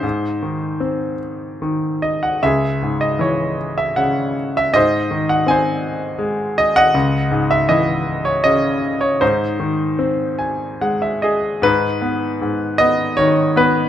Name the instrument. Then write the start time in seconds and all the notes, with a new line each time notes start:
grand piano
Already playing: D#4 C5
0.03 G#2
0.42 D#3
0.80 C4
1.62 D#3
2.02 D#5
2.23 F#5
2.43 C#2 G#4 E5
2.82 G#2
3.01 D#5
3.19 E3 C#5
3.78 E5
3.96 C#3 F#5
4.57 E5
4.74 G#2 C5 D#5
5.11 D#3
5.29 F#5
5.46 C4 G#5
5.51 C5
6.19 G#3
6.58 D#5
6.76 D#5 F#5
6.94 C#2
7.31 G#2
7.51 E5
7.69 E3 D#5
8.25 C#5
8.44 C#3 D#5
9.01 C#5
9.21 G#2 D#4 C5
9.60 D#3
9.99 C4
10.39 G#5
10.81 G#3 F#5
11.02 E5
11.22 G#4 D#5
11.62 G#2 D#4 B4
12.01 B3
12.41 G#2
12.78 B3 D#5
13.17 D#3 C#5
13.56 B3 B4